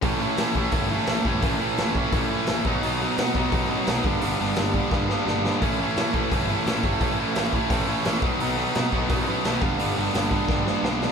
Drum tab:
HH |o-o-o-o-|o-o-o-o-|o-o-o-o-|o-o-----|
SD |--o---o-|--o---o-|--o---o-|--o-oooo|
BD |o--oo--o|o--oo--o|---oo--o|---oo---|

HH |o-o-o-o-|o-o-o-o-|o-o-o-o-|o-o-----|
SD |--o---o-|--o---o-|--o---o-|--o-oooo|
BD |o--oo--o|o--oo--o|---oo--o|---oo---|